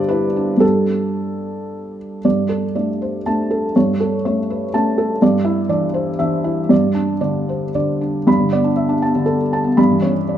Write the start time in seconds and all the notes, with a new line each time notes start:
Already playing: G2 D3 G3 D4 C5 D5
0.09 E4 B4
0.36 D4
0.57 G2 G3 D4 G4 A4
2.25 G2 D5
2.49 A4
2.75 A3 D4 D5
3.02 C5
3.26 A3 D4 A5
3.51 A4
3.76 G2 C#5
4.00 A4
4.25 A3 C#4 C#5
4.50 B4
4.73 A3 C#4 A5
4.98 A4
5.22 G2 D5
5.45 E4
5.69 E3 D4 D5
5.94 C5
6.19 E3 D4 E5
6.44 E4
6.69 G2 D5
6.95 D4
7.21 D3 D4 D5
7.49 C5
7.75 D3 D4 D5
8.01 D4
8.27 G2 B5
8.40 D3
8.52 B3 D5
8.64 D4
8.76 E5
8.89 D4
9.02 B3 A5
9.15 D3
9.26 A4
9.53 A5
9.64 B3
9.77 G2 B5
9.91 E3
10.02 C#4 C#5
10.29 D5